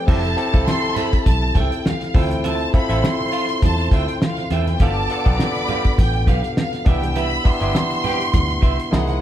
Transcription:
Already playing: tine electric piano F3 G4 B4
0.06 fingered electric bass F1, tine electric piano C4 E4 G4 A4, string section A4 A5, clean electric guitar A4 C5 E5, violin section A5, kick, crash, muted conga
0.25 closed hi-hat
0.37 tine electric piano C4 E4 G4 A4, muted clean electric guitar stroke, closed hi-hat
0.52 fingered electric bass C2, tine electric piano C4 E4 G4 A4, clean electric guitar A4 C5 F5, kick, closed hi-hat
0.67 violin section C6, snare, high conga
0.84 muted clean electric guitar stroke
0.95 clean electric guitar A4 C5 E5, violin section B5, closed hi-hat, low conga
1.13 muted clean electric guitar stroke, kick, closed hi-hat
1.26 fingered electric bass B1, violin section A5, kick, closed hi-hat, muted conga
1.43 muted clean electric guitar stroke
1.55 fingered electric bass C2, clean electric guitar A4 C5 E5, violin section G5, kick, closed hi-hat, muted conga, low conga
1.72 muted clean electric guitar stroke, closed hi-hat
1.85 violin section F5, muted clean electric guitar stroke, snare, high conga
2.01 muted clean electric guitar stroke, snare, closed hi-hat
2.14 fingered electric bass D2, tine electric piano C4 E4 F4 A4, clean electric guitar F4 C5 E5, string section C5 C6, kick, open hi-hat, high conga
2.18 violin section G5
2.30 muted clean electric guitar stroke, closed hi-hat, high conga
2.44 clean electric guitar F4 C5 E5, violin section A5, closed hi-hat, muted conga
2.60 closed hi-hat
2.73 tine electric piano C4 E4 F4 A4, muted clean electric guitar stroke, kick, closed hi-hat
2.77 violin section B5
2.89 fingered electric bass A1, tine electric piano C4 E4 F4 A4, clean electric guitar F4 C5 E5, closed hi-hat
3.04 violin section C6, snare, high conga
3.19 muted clean electric guitar stroke
3.32 clean electric guitar F4 C5 F5, closed hi-hat
3.49 muted clean electric guitar stroke, closed hi-hat
3.62 fingered electric bass E2, violin section A5, muted clean electric guitar stroke, kick, closed hi-hat, muted conga, low conga
3.79 muted clean electric guitar stroke, closed hi-hat
3.91 fingered electric bass D2, clean electric guitar F4 C5 E5, kick, closed hi-hat
3.96 violin section G5
4.08 muted clean electric guitar stroke, closed hi-hat
4.22 violin section F5, muted clean electric guitar stroke, snare, high conga
4.37 muted clean electric guitar stroke, snare, closed hi-hat
4.50 fingered electric bass E2, clean electric guitar F4 C5 E5, string section G4 G5, violin section G5, closed hi-hat, high conga
4.58 string section A4 A5
4.66 string section B4 B5, muted clean electric guitar stroke, closed hi-hat, high conga
4.72 string section C5 C6
4.78 fingered electric bass G1, tine electric piano B3, clean electric guitar G4 B4 F5, string section D5 D6, kick, closed hi-hat, muted conga
4.82 tine electric piano D4 F4 A4, violin section A5
5.10 tine electric piano B3 D4 F4 A4, muted clean electric guitar stroke, closed hi-hat
5.25 fingered electric bass B1, tine electric piano B3 D4 F4 A4, clean electric guitar G4 B4 G5, kick, closed hi-hat
5.35 violin section A#5
5.40 violin section B5, snare, high conga
5.54 muted clean electric guitar stroke, closed hi-hat
5.68 clean electric guitar G4 B4 F5, closed hi-hat, low conga
5.84 muted clean electric guitar stroke, kick, closed hi-hat
5.98 fingered electric bass A1, violin section G5, kick, closed hi-hat, muted conga
6.13 muted clean electric guitar stroke
6.27 fingered electric bass B1, clean electric guitar G4 B4 F5, violin section F5, kick, closed hi-hat, muted conga, low conga
6.43 muted clean electric guitar stroke, closed hi-hat
6.57 violin section F5, muted clean electric guitar stroke, snare, high conga
6.72 muted clean electric guitar stroke, snare, closed hi-hat
6.85 fingered electric bass C2, tine electric piano B3 D4 E4 G4, clean electric guitar G4 B4 E5, string section E5 E6, kick, closed hi-hat, high conga
6.89 violin section G5
7.02 muted clean electric guitar stroke, closed hi-hat, high conga
7.16 clean electric guitar G4 B4 E5, violin section B5, closed hi-hat, muted conga
7.44 tine electric piano B3 D4 E4 G4, violin section C6, muted clean electric guitar stroke, kick, closed hi-hat
7.60 fingered electric bass G1, tine electric piano B3 D4 E4 G4, clean electric guitar G4 B4 E5, closed hi-hat
7.75 snare, high conga
7.91 muted clean electric guitar stroke, closed hi-hat
8.04 horn section E3 G3 C4 G4, clean electric guitar G4 B4 G5, closed hi-hat, low conga
8.20 muted clean electric guitar stroke, closed hi-hat
8.34 fingered electric bass D2, kick, closed hi-hat, muted conga, low conga
8.48 muted clean electric guitar stroke, closed hi-hat
8.61 fingered electric bass C2, clean electric guitar G4 B4 E5, kick, closed hi-hat
8.78 muted clean electric guitar stroke, closed hi-hat
8.91 fingered electric bass C2, tine electric piano A#3 D#4 E4 G#4, string section C5 C6, violin section F#5, muted clean electric guitar stroke, snare, high conga
8.99 string section E4 E5
9.07 string section F#4 F#5, muted clean electric guitar stroke, snare, closed hi-hat
9.15 string section G#4 G#5

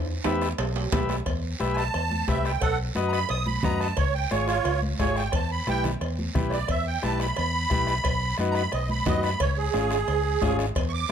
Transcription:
Already playing: fingered electric bass E2
0.24 fingered electric bass E2, transistor combo organ G4 B4 E5, bombo rim, high conga, high timbale, short guiro
0.42 bombo rim, short guiro
0.58 fingered electric bass B1, bombo rim, cowbell, low timbale, long guiro
0.76 low timbale
0.92 fingered electric bass B1, transistor combo organ G4 B4 E5, bombo low, bombo rim, high conga, low conga, low timbale, short guiro
1.09 bombo rim, low timbale, short guiro
1.26 fingered electric bass E2, bombo low, bombo rim, cowbell, long guiro
1.60 fingered electric bass B1, transistor combo organ G4 B4 E5, bombo rim, high conga, short guiro
1.73 accordion G#5, bombo rim
1.77 accordion A5, short guiro
1.94 fingered electric bass E2, bombo rim, cowbell, long guiro
2.11 high conga
2.28 fingered electric bass C2, transistor combo organ G4 B4 E5, accordion E5, bombo low, bombo rim, high conga, low timbale, short guiro
2.45 accordion G5, bombo rim, short guiro
2.61 fingered electric bass B1, accordion A4 F#5, bombo low, bombo rim, cowbell, long guiro
2.95 fingered electric bass F#2, transistor combo organ F#4 B4 D#5, bombo rim, high conga, short guiro
3.08 accordion A#5
3.13 accordion B5, bombo rim, short guiro
3.29 fingered electric bass B1, accordion D#6, bombo rim, cowbell, long guiro
3.46 accordion B5, high conga
3.63 fingered electric bass F#2, transistor combo organ F#4 B4 D#5, accordion A#5, bombo low, bombo rim, high conga, low conga, short guiro
3.80 accordion A5, bombo rim, short guiro
3.97 fingered electric bass C#2, accordion C#5, bombo low, bombo rim, cowbell, long guiro
4.15 accordion G5
4.31 fingered electric bass G#1, transistor combo organ F4 G#4 C#5, accordion C#5, bombo rim, high conga, short guiro
4.47 accordion F4 C#5, bombo rim, short guiro
4.65 fingered electric bass C#2, bombo rim, cowbell, long guiro
4.83 high conga
4.99 fingered electric bass G#1, transistor combo organ F4 G#4 C#5, accordion C#5, bombo low, bombo rim, high conga, low timbale, short guiro
5.16 accordion G5, bombo rim, short guiro
5.32 fingered electric bass E2, accordion A5, bombo low, bombo rim, cowbell, long guiro
5.51 accordion B5
5.67 fingered electric bass B1, transistor combo organ E4 G4 B4, accordion G5, bombo rim, high conga, short guiro
5.84 bombo rim, low conga, short guiro
6.01 fingered electric bass E2, bombo rim, cowbell, long guiro
6.19 high conga
6.35 fingered electric bass B1, transistor combo organ E4 G4 B4, bombo low, bombo rim, high conga, low conga, short guiro
6.49 accordion C#5, bombo rim, short guiro
6.53 accordion D5
6.68 fingered electric bass E2, accordion E5, bombo low, bombo rim, cowbell, long guiro
6.87 accordion G5
7.02 fingered electric bass B1, transistor combo organ E4 G4 B4, accordion A5, bombo rim, high conga, short guiro
7.20 accordion B5, bombo rim, short guiro
7.36 fingered electric bass E2, accordion B5, bombo rim, cowbell, long guiro
7.70 fingered electric bass B1, transistor combo organ E4 G4 B4, bombo low, bombo rim, high conga, short guiro
7.87 bombo rim, short guiro
8.04 fingered electric bass B1, bombo low, bombo rim, cowbell, long guiro
8.38 fingered electric bass F#2, transistor combo organ D#4 F#4 B4, bombo rim, high conga, short guiro
8.51 accordion A#5, bombo rim, short guiro
8.56 accordion B5
8.72 fingered electric bass B1, accordion D#5, bombo rim, cowbell, long guiro
8.89 accordion B5, high conga
9.06 fingered electric bass F#2, transistor combo organ D#4 F#4 B4, accordion D#5, bombo low, bombo rim, high conga, low conga, low timbale, short guiro
9.23 accordion B5, bombo rim, short guiro
9.40 fingered electric bass C#2, accordion C#5, bombo low, bombo rim, cowbell, long guiro
9.58 accordion G#4
9.73 fingered electric bass G#1, transistor combo organ C#4 F4 G#4, bombo rim, high conga, short guiro
9.91 bombo rim, short guiro
10.08 fingered electric bass C#2, bombo rim, cowbell, long guiro
10.42 fingered electric bass G#1, transistor combo organ C#4 F4 G#4, bombo low, bombo rim, high conga, low timbale, short guiro
10.59 bombo rim, short guiro
10.75 fingered electric bass E2, bombo low, bombo rim, cowbell, long guiro
10.89 accordion C#6
10.94 accordion D6

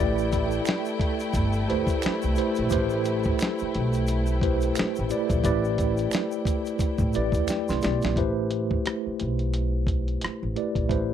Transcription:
Already playing: tine electric piano A3 E4, string section A3 E4 G5
0.00 upright bass A1, tine electric piano G4 B4 D5
0.18 shaker
0.32 kick, closed hi-hat, shaker
0.51 shaker
0.65 finger snap, snare, closed hi-hat, shaker
0.85 shaker
1.00 kick, closed hi-hat
1.20 closed hi-hat, shaker
1.34 upright bass G1, kick, closed hi-hat, shaker
1.53 shaker
1.68 upright bass D2, tine electric piano A3 E4 G4 B4 C5, closed hi-hat
1.87 kick, closed hi-hat, shaker
2.02 finger snap, muted upright bass stroke, closed hi-hat, shaker
2.06 snare
2.22 upright bass C2, shaker
2.36 tine electric piano A3 E4 G4 B4 C5, closed hi-hat, shaker
2.55 upright bass A#1, closed hi-hat, shaker
2.70 upright bass A1, tine electric piano A3 E4 G4 B4 C5, kick, closed hi-hat, shaker
2.90 shaker
3.05 closed hi-hat, shaker
3.23 kick, shaker
3.39 finger snap, snare, closed hi-hat, shaker
3.59 muted upright bass stroke, shaker
3.75 upright bass B1, closed hi-hat
3.93 closed hi-hat, shaker
4.07 closed hi-hat, shaker
4.26 shaker
4.41 tine electric piano A3 E4 G4 B4 C5, kick, closed hi-hat
4.61 closed hi-hat, shaker
4.75 finger snap, muted upright bass stroke, snare, closed hi-hat, shaker
4.96 upright bass A1, shaker
5.10 tine electric piano A3 E4 G4 B4 D5, closed hi-hat, shaker
5.30 upright bass A#1, kick, closed hi-hat, shaker
5.44 upright bass A1, tine electric piano A3 E4 G4 B4 D5, kick, closed hi-hat, shaker
5.65 shaker
5.78 kick, closed hi-hat, shaker
5.97 closed hi-hat, shaker
6.11 finger snap, snare, closed hi-hat, shaker
6.32 shaker
6.45 kick, closed hi-hat, shaker
6.66 closed hi-hat, shaker
6.79 kick, closed hi-hat, shaker
6.98 upright bass A2, kick, shaker
7.13 upright bass A1, tine electric piano A3 E4 G4 B4 D5, closed hi-hat, shaker
7.32 upright bass E2, kick, closed hi-hat, shaker
7.48 tine electric piano G5, finger snap, snare, closed hi-hat, shaker
7.68 upright bass C2, tine electric piano C6, snare, shaker
7.82 upright bass B1, tine electric piano A3 B3 E4 G4 D5, snare, closed hi-hat, shaker
8.02 upright bass A#1, snare, closed hi-hat, shaker
8.16 upright bass A1, tine electric piano A3 E4 G4 B4 C5, kick, closed hi-hat
8.51 closed hi-hat
8.71 kick
8.86 cross-stick, closed hi-hat
9.07 muted upright bass stroke
9.20 upright bass B1, closed hi-hat
9.39 closed hi-hat
9.54 closed hi-hat
9.87 kick, closed hi-hat
10.08 closed hi-hat
10.21 muted upright bass stroke, cross-stick, closed hi-hat
10.43 upright bass A1
10.56 tine electric piano A3 E4 G4 B4 D5, closed hi-hat
10.75 upright bass A#1, kick, closed hi-hat
10.89 upright bass A1, tine electric piano A3 E4 G4 B4 C5, kick, closed hi-hat

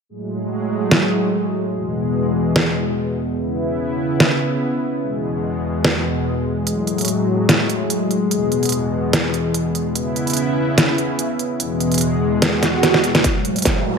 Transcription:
0.09 analog synth pad A2 F#3 G#3
0.91 snare
1.74 analog synth pad E2 B2 G#3
2.56 snare
3.38 analog synth pad C#3 B3 E4
4.20 snare
5.02 analog synth pad E2 B2 G#3
5.85 snare
6.67 analog synth pad A2 F#3, closed hi-hat
6.87 closed hi-hat
6.98 closed hi-hat
7.01 closed hi-hat
7.05 closed hi-hat
7.08 closed hi-hat
7.49 snare, closed hi-hat
7.70 closed hi-hat
7.90 closed hi-hat
8.11 closed hi-hat
8.31 analog synth pad E2 B2, closed hi-hat
8.52 closed hi-hat
8.63 closed hi-hat
8.65 closed hi-hat
8.69 closed hi-hat
8.72 closed hi-hat
9.13 snare, closed hi-hat
9.34 closed hi-hat
9.54 closed hi-hat
9.75 closed hi-hat
9.95 analog synth pad C#3 B3 E4, closed hi-hat
10.16 closed hi-hat
10.27 closed hi-hat
10.30 closed hi-hat
10.33 closed hi-hat
10.37 closed hi-hat
10.78 snare, closed hi-hat
10.98 closed hi-hat
11.19 closed hi-hat
11.39 closed hi-hat
11.60 analog synth pad E2 B2 G#3, closed hi-hat
11.80 closed hi-hat
11.92 closed hi-hat
11.94 closed hi-hat
11.98 closed hi-hat
12.01 closed hi-hat
12.42 snare, closed hi-hat, swell
12.63 snare, closed hi-hat
12.83 snare, closed hi-hat
12.94 snare
13.04 closed hi-hat
13.15 snare, closed hi-hat
13.24 analog synth pad A2 F#3 G#3, kick, snare, closed hi-hat, riser
13.45 closed hi-hat
13.56 closed hi-hat
13.59 closed hi-hat
13.62 kick, snare, closed hi-hat
13.65 closed hi-hat

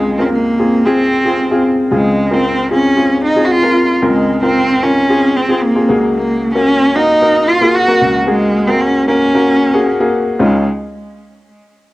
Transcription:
Already playing: upright piano C#2 C#3 C4 F4 G#4 A#4, cello G#3
0.18 cello C4 C#4, upright piano C4 F4 A#4
0.26 cello C4
0.33 cello A#3
0.59 upright piano C4 F4 G#4
0.85 upright piano C4 F4 G#4, cello C4
1.25 upright piano C4 F4 G#4
1.51 upright piano C4 F4 G#4
1.91 upright piano C#2 C#3 C4 F4 G#4, cello G#3
2.31 upright piano C4 F4 A#4, cello C4
2.71 upright piano C4 F4 G#4, cello C#4
2.96 upright piano C4 F4 G#4
3.25 cello D#4
3.35 upright piano C4 F4 G#4
3.45 cello F#4
3.51 cello F4
3.62 upright piano C4 F4 A#4
4.02 upright piano C#2 C#3 C4 F4 A#4, cello G#3
4.42 upright piano C4 F4 A#4, cello C4
4.82 upright piano C4 F4 A#4, cello C#4
5.09 upright piano C4 F4 G#4
5.36 cello C4
5.48 upright piano C4 F4 G#4
5.63 cello A#3
5.75 upright piano C4 F4 G#4
5.89 upright piano C#2 C#3 A#3 F#4 G#4
6.15 cello A#3
6.55 upright piano A#3 F#4 A#4, cello C#4
6.96 upright piano A#3 F#4 A#4, cello D#4
7.22 upright piano A#3 F#4 A#4
7.49 cello F4
7.61 upright piano A#3 F#4 G#4
7.75 cello F#4
7.88 upright piano A#3 F#4 A#4
8.01 upright piano C#2 C#3
8.27 cello G#3, upright piano A#3 F#4 G#4
8.67 upright piano A#3 F#4 A#4, cello C4
8.81 cello C#4
9.08 upright piano A#3 F#4 A#4, cello C#4
9.34 upright piano A#3 F#4 A#4
9.74 upright piano A#3 F#4 G#4
10.00 upright piano A#3 F#4 G#4
10.39 upright piano C#2 C#4 D#4 F4, cello G#3

